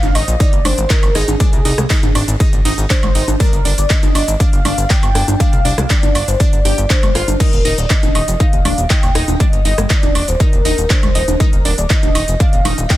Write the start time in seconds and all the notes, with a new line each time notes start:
Already playing: F5
0.03 G#1, closed hi-hat, high conga, shaker
0.15 G#1 D#4 D#5, open hi-hat, high woodblock
0.28 A#1, closed hi-hat, shaker
0.40 D#4 D5 D#5, kick, closed hi-hat, shaker
0.53 G#1, closed hi-hat, shaker
0.65 G#1 D4 C5 D5, open hi-hat, high conga, low conga, high woodblock
0.78 G#1, closed hi-hat, shaker
0.90 D#4 A#4 D#5, kick, clap, closed hi-hat, shaker
1.03 G#1, closed hi-hat, high woodblock, shaker
1.15 G#1 D#4 G#4 D#5, cross-stick, open hi-hat
1.28 G#1, closed hi-hat, high conga, shaker
1.40 D4 D5, kick, closed hi-hat, low conga, shaker
1.53 C2, closed hi-hat, shaker
1.65 C2 D#4 D#5, open hi-hat
1.78 C2, cross-stick, closed hi-hat, low conga, shaker
1.90 D#4 D#5, kick, clap, closed hi-hat, shaker
2.03 G#1, closed hi-hat, high conga, shaker
2.15 G#1 D4 D5, open hi-hat, high woodblock
2.28 G#1, closed hi-hat, shaker
2.40 D#4 D#5, kick, closed hi-hat, shaker
2.53 G#1, closed hi-hat, shaker
2.65 G#1 D#4 D#5, open hi-hat, high conga
2.78 G#1, closed hi-hat, shaker
2.90 D4 C5 D5, kick, clap, closed hi-hat, shaker
3.03 G#1, closed hi-hat, low conga, high woodblock, shaker
3.15 G#1 D#4 D#5, open hi-hat
3.28 G#1, closed hi-hat, high conga, shaker
3.40 D4 A#4 D5, kick, closed hi-hat, low conga, shaker
3.53 G1, closed hi-hat, shaker
3.65 G1 D4 D5, open hi-hat
3.78 G1 D5, closed hi-hat, shaker
3.90 D4 D5 D#5, kick, clap, closed hi-hat, shaker
4.03 G1, closed hi-hat, high conga, shaker
4.15 G1 D4 D5, open hi-hat, high woodblock
4.28 G#1, closed hi-hat, shaker
4.40 D4 D5 F5, kick, closed hi-hat, shaker
4.53 G1, closed hi-hat, shaker
4.65 G1 D4 D5, open hi-hat, high conga, low conga, high woodblock
4.78 G1, closed hi-hat, shaker
4.90 D4 D5 G5, kick, clap, closed hi-hat, shaker
5.03 G1, closed hi-hat, high woodblock, shaker
5.15 G1 D4 D5, cross-stick, open hi-hat
5.28 G1, closed hi-hat, high conga, shaker
5.40 D4 D5 F5, kick, closed hi-hat, low conga, shaker
5.53 C2, closed hi-hat, shaker
5.65 C2 D4 D5, open hi-hat
5.78 C2, cross-stick, closed hi-hat, low conga, shaker
5.90 D4 D5, kick, clap, closed hi-hat, shaker
6.03 G1, closed hi-hat, high conga, shaker
6.15 G1 D4 D5, open hi-hat, high woodblock
6.28 G1 C5, closed hi-hat, shaker
6.40 D4 D5, kick, closed hi-hat, shaker
6.53 G1, closed hi-hat, shaker
6.65 G1 G4 G5, open hi-hat, high conga
6.78 G1, closed hi-hat, shaker
6.90 D4 C5 D5, kick, clap, closed hi-hat, shaker
7.03 G1, closed hi-hat, low conga, high woodblock, shaker
7.15 G1 F4 F5, cross-stick, open hi-hat
7.28 G1, closed hi-hat, high conga, shaker
7.40 D#4 A#4 D#5, kick, closed hi-hat, crash, low conga, shaker
7.53 D#1, closed hi-hat, shaker
7.65 D#1 D#4 D#5, open hi-hat
7.78 D#1 D5, closed hi-hat, shaker
7.90 D4 D5 D#5, kick, clap, closed hi-hat, shaker
8.03 D#1, closed hi-hat, high conga, shaker
8.15 D#1 D#4 D#5, open hi-hat, high woodblock
8.28 F1, closed hi-hat, shaker
8.40 D#4 D#5 F5, kick, closed hi-hat, shaker
8.53 D#1, closed hi-hat, shaker
8.65 D#1 D4 D5, open hi-hat, high conga, low conga, high woodblock
8.78 D#1, closed hi-hat, shaker
8.90 D#4 D#5, kick, clap, closed hi-hat, shaker
9.03 D#1, closed hi-hat, high woodblock, shaker
9.15 D#1 D#4 D#5, cross-stick, open hi-hat
9.28 D#1, closed hi-hat, high conga, shaker
9.40 D4 D5 D#5, kick, closed hi-hat, low conga, shaker
9.53 G1, closed hi-hat, shaker
9.65 G1 D#4 D#5, open hi-hat
9.78 G1, cross-stick, closed hi-hat, low conga, shaker
9.90 D#4 D5 D#5, kick, clap, closed hi-hat, shaker
10.03 D#1, closed hi-hat, high conga, shaker
10.15 D#1 D4 D5, open hi-hat, high woodblock
10.28 D#1 C5, closed hi-hat, shaker
10.40 D#4 A#4 D#5, kick, closed hi-hat, shaker
10.53 D#1, closed hi-hat, shaker
10.65 D#1 D#4 D#5, open hi-hat, high conga
10.78 D#1, closed hi-hat, shaker
10.90 D4 C5 D5, kick, clap, closed hi-hat, shaker
11.03 D#1, closed hi-hat, low conga, high woodblock, shaker
11.15 D#1 D#4 D#5, open hi-hat
11.28 D#1, closed hi-hat, high conga, shaker
11.40 D#4 A#4 D#5, kick, closed hi-hat, low conga, shaker
11.53 D#1, closed hi-hat, shaker
11.65 D#1 D4 D5, open hi-hat
11.78 D#1 D5, closed hi-hat, shaker
11.90 D#4 D#5, kick, clap, closed hi-hat, shaker
12.03 D#1, closed hi-hat, high conga, shaker
12.15 D#1 D#4 D#5, open hi-hat, high woodblock
12.28 F1, closed hi-hat, shaker
12.40 D4 D5 F5, kick, closed hi-hat, shaker
12.53 D#1, closed hi-hat, shaker
12.65 D#1 D#4 D#5, open hi-hat, high conga, low conga, high woodblock
12.78 D#1, closed hi-hat, shaker
12.90 D#4 D#5 G5, kick, clap, closed hi-hat, shaker